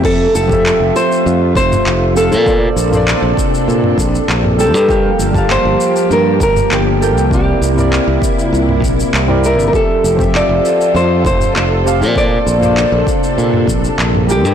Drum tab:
CC |x---------------|----------------|----------------|----------------|
SH |x-xxx-xxx-xxx-xx|x-xxx-xxx-xxx-xx|x-xxx-xxx-xxx-xx|x-xxx-xxx-xxx-xx|
CP |----x-------x---|----x-------x---|----x-------x---|----x-------x---|
T2 |---o-------o----|---o-----o---o--|---o-------o----|---o-----o---o--|
BD |o--o------o-----|o-----o---o-----|o--o------o-----|o-----o---o-----|

CC |----------------|----------------|
SH |x-xxx-xxx-xxx-xx|x-xxx-xxx-xxx-xx|
CP |----x-------x---|----x-------x---|
T2 |---o-------o----|---o-----o---o--|
BD |o--o------o-----|o-----o---o-----|